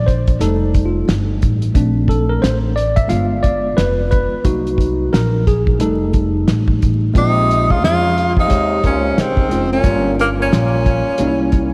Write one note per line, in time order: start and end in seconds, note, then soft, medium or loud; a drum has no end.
0.00 0.37 A#1 medium
0.00 0.36 D#3 medium
0.00 0.36 A#3 medium
0.00 0.36 D4 medium
0.06 0.38 C5 medium
0.06 kick medium
0.06 closed hi-hat medium
0.27 kick loud
0.27 closed hi-hat medium
0.39 1.05 F1 loud
0.39 1.71 G3 medium
0.39 1.71 A3 medium
0.39 1.72 D#4 medium
0.39 0.87 A4 medium
0.39 snare soft
0.39 closed hi-hat loud
0.74 kick medium
0.74 closed hi-hat medium
0.85 1.17 F4 medium
1.08 1.40 G1 medium
1.08 snare loud
1.08 closed hi-hat medium
1.42 1.74 A1 medium
1.42 kick medium
1.42 closed hi-hat medium
1.62 closed hi-hat medium
1.74 2.39 A#1 loud
1.74 2.72 A3 medium
1.74 2.73 C4 soft
1.74 2.73 D4 medium
1.74 kick loud
1.74 closed hi-hat medium
2.08 2.31 A4 medium
2.08 kick medium
2.08 closed hi-hat medium
2.29 2.43 A#4 medium
2.42 3.07 A1 medium
2.42 2.57 C5 loud
2.42 snare loud
2.42 closed hi-hat loud
2.76 2.96 D5 medium
2.76 closed hi-hat medium
2.96 3.10 E5 loud
2.96 kick loud
2.96 closed hi-hat medium
3.08 3.74 G1 loud
3.08 4.40 G#3 medium
3.08 4.40 B3 medium
3.08 4.41 F4 medium
3.08 3.45 F5 loud
3.08 closed hi-hat loud
3.43 3.78 D5 loud
3.43 kick medium
3.43 closed hi-hat medium
3.77 4.30 F1 medium
3.77 4.10 B4 loud
3.77 snare loud
3.77 closed hi-hat loud
4.11 4.46 B4 medium
4.11 kick loud
4.11 closed hi-hat medium
4.32 muted upright bass stroke soft
4.44 5.09 C2 loud
4.44 5.42 F#3 medium
4.44 5.42 A#3 medium
4.44 5.42 D#4 medium
4.44 5.15 F#4 loud
4.44 kick loud
4.44 closed hi-hat loud
4.67 closed hi-hat soft
4.78 kick medium
4.78 closed hi-hat medium
5.13 5.77 A#1 loud
5.13 5.47 A#4 medium
5.13 snare loud
5.13 closed hi-hat loud
5.47 5.82 G#4 medium
5.47 kick loud
5.47 closed hi-hat medium
5.67 kick loud
5.79 6.44 F1 loud
5.79 7.10 G3 medium
5.79 7.11 A3 medium
5.79 7.11 D#4 medium
5.79 6.12 A4 medium
5.79 closed hi-hat loud
6.13 kick medium
6.13 closed hi-hat medium
6.48 6.80 A1 medium
6.48 snare loud
6.48 closed hi-hat medium
6.68 kick loud
6.82 7.14 A1 medium
6.82 kick loud
6.82 closed hi-hat medium
7.14 7.83 A#1 loud
7.14 7.72 C3 medium
7.14 8.35 G#3 medium
7.14 8.35 A#3 medium
7.14 8.35 C4 medium
7.14 7.73 D#4 loud
7.14 8.36 F4 medium
7.14 kick loud
7.14 closed hi-hat medium
7.51 closed hi-hat medium
7.70 7.82 C#3 medium
7.70 7.83 F4 medium
7.70 kick medium
7.83 8.47 F2 medium
7.83 8.33 C#3 medium
7.83 8.34 F4 loud
7.83 snare loud
7.83 closed hi-hat loud
8.18 closed hi-hat medium
8.36 8.80 C3 medium
8.36 8.82 D#4 loud
8.36 kick loud
8.48 8.82 D#2 medium
8.48 9.40 G#3 medium
8.48 9.41 G4 medium
8.48 9.40 C5 medium
8.48 9.40 C#5 medium
8.48 kick medium
8.48 closed hi-hat loud
8.82 9.16 C#2 medium
8.82 9.19 A#2 medium
8.82 9.22 C#4 medium
8.82 kick medium
8.82 closed hi-hat medium
9.17 9.49 C2 medium
9.17 9.71 G#2 medium
9.17 9.72 C4 medium
9.17 snare loud
9.17 closed hi-hat medium
9.37 kick medium
9.49 9.83 F1 medium
9.49 9.80 G#3 medium
9.49 9.81 C4 medium
9.49 9.81 C#4 medium
9.49 9.82 F4 medium
9.49 closed hi-hat medium
9.71 10.15 A#2 medium
9.71 10.15 C#4 medium
9.83 10.48 G1 loud
9.83 11.04 G3 medium
9.83 11.04 A#3 medium
9.83 11.05 C#4 medium
9.83 11.05 F4 medium
9.83 kick loud
9.83 closed hi-hat medium
10.18 10.27 G2 medium
10.18 10.30 A#3 medium
10.18 closed hi-hat medium
10.39 11.74 A#2 medium
10.39 11.74 C#4 medium
10.52 11.04 A#1 medium
10.52 snare loud
10.52 closed hi-hat loud
10.86 kick medium
10.86 closed hi-hat medium
11.18 11.74 C2 loud
11.18 11.74 G3 medium
11.18 11.74 A#3 medium
11.18 11.74 C#4 medium
11.18 11.28 D#4 medium
11.18 closed hi-hat loud
11.27 11.74 E4 loud
11.52 kick medium
11.52 closed hi-hat medium